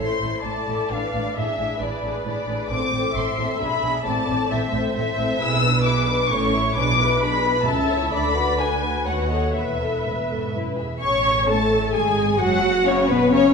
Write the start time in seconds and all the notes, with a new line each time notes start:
0.00 E4 A4 C5 C6
0.21 A1 A2 E4 A4
0.44 A1 A2 E4 A4 D5 A5
0.67 A1 A2 E4 A4
0.90 A1 A2 D4 B4 F5
1.14 A1 A2 D4 B4
1.36 A1 A2 D4 G#4 E5
1.58 A1 A2 D4 G#4
1.81 A1 A2 D4 G#4 B4 D5
2.03 A1 A2 D4 G#4
2.25 A1 A2 D4 G#4 D5
2.48 A1 A2 D4 G#4
2.69 A1 A2 C4 A4 C5 D6
2.92 A1 A2 C4 A4
3.15 A1 A2 C4 A4 E5 C6
3.38 A1 A2 C4 A4
3.60 B1 B2 D4 G#4 B5
3.82 B1 B2 D4 G#4
4.05 A1 A2 C4 A4 D5 A5
4.27 A1 A2 C4 A4
4.50 A1 A2 C4 A4 C5 E5
4.71 A1 A2 C4 A4
4.94 A1 A2 C4 A4 E5
5.17 A1 A2 C4 A4
5.39 B1 B2 E4 G#4 B4 E6
5.62 D4 B4
5.85 E4 G#4 D6
6.08 D4 B4
6.30 A1 A2 C#4 A4 C#5 C#6
6.53 E4 C#5
6.75 B1 B2 D4 G#4 B4 D6
6.99 E4 B4
7.21 D4 G#4 B5
7.44 E4 B4
7.67 C#2 C#4 A4 E5 A5
7.90 E4 C#5
8.12 D2 D4 A4 D5 B5
8.35 F#4 B4
8.58 D4 A4 B4 G#5
8.82 F#4 B4
9.05 D#2 F#4 B4 C#5 F#5
9.30 A4 D#5
9.55 E1 E2 B4 E5
9.80 A4
10.05 A2 B4
10.29 G#2 A4
10.54 F#2 E4 B4
10.78 E2 G#4 E5
11.01 A1 C#4 C#5 C#6
11.48 A3 A4 A5
11.94 G#1 G#3 G#4 G#5
12.40 F#1 F#3 F#4 F#5
12.87 C#3 C#4 C#5
13.09 B2 B3 B4
13.32 C#3 C#4 C#5